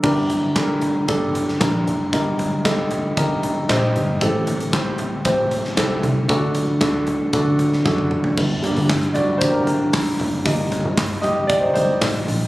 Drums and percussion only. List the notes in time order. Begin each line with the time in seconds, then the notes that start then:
0.04 kick, crash
0.30 closed hi-hat, floor tom
0.56 kick, snare, clap, closed hi-hat
0.81 closed hi-hat, floor tom
1.08 kick, closed hi-hat
1.35 closed hi-hat, floor tom
1.48 snare
1.61 kick, snare, clap, closed hi-hat
1.87 closed hi-hat
2.13 kick, closed hi-hat
2.39 closed hi-hat, floor tom
2.65 kick, snare, clap, closed hi-hat
2.91 closed hi-hat, floor tom
3.17 kick, closed hi-hat
3.43 closed hi-hat, floor tom
3.69 kick, snare, clap, closed hi-hat
3.96 closed hi-hat
4.21 kick, closed hi-hat
4.47 closed hi-hat, floor tom
4.60 closed hi-hat
4.73 kick, snare, clap, closed hi-hat
4.98 closed hi-hat, floor tom
5.25 kick, closed hi-hat
5.51 closed hi-hat, floor tom
5.64 snare
5.77 kick, snare, clap, closed hi-hat
6.03 closed hi-hat, floor tom
6.29 kick, closed hi-hat
6.55 closed hi-hat, floor tom
6.81 kick, snare, clap, closed hi-hat
7.07 closed hi-hat, floor tom
7.33 kick, closed hi-hat
7.59 closed hi-hat, floor tom
7.73 snare
7.86 kick, snare
7.98 high tom
8.11 mid tom
8.24 floor tom
8.37 kick, crash
8.64 floor tom, hi-hat pedal, open hi-hat
8.77 open hi-hat
8.89 kick, snare, clap, hi-hat pedal, open hi-hat
9.02 hi-hat pedal
9.15 floor tom, hi-hat pedal, open hi-hat
9.41 kick, hi-hat pedal, open hi-hat
9.67 floor tom, hi-hat pedal, open hi-hat
9.93 kick, snare, clap, hi-hat pedal, open hi-hat
10.20 floor tom, hi-hat pedal, open hi-hat
10.45 kick, hi-hat pedal, open hi-hat
10.72 floor tom, hi-hat pedal, open hi-hat
10.97 kick, snare, clap, hi-hat pedal, open hi-hat
11.23 floor tom, hi-hat pedal, open hi-hat
11.49 kick, hi-hat pedal, open hi-hat
11.76 floor tom, hi-hat pedal, open hi-hat
12.01 kick, snare, clap, hi-hat pedal, open hi-hat
12.28 hi-hat pedal, open hi-hat
12.41 open hi-hat